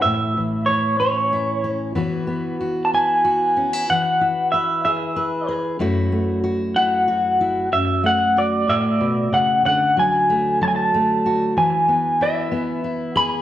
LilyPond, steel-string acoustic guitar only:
\new Staff \with { instrumentName = "Steel-string acoustic guitar" } { \time 6/8 \key d \lydian \tempo 4. = 62 << { r4 e'8 cis'8 e'8 cis'8 | <b e' fis'>4 fis'8 e'8 fis'8 cis'16 e'16 | r4 b'8 gis'8 b'8 gis'8 | <a e' fis'>4 fis'8 e'8 fis'8 e'8 |
r4 fis'2 | r4 a4 a8 fis'8 | r4 e'4 e'8 gis'8 | } \\ { <a, e>8 e2~ e8 | e8 b2~ b8 | e8 e'2~ e'8 | fis,8 a2~ a8 |
fis,8 a4 a,8 b,8 cis8 | d8 fis4 fis4. | e8 b4 b4. | } >> }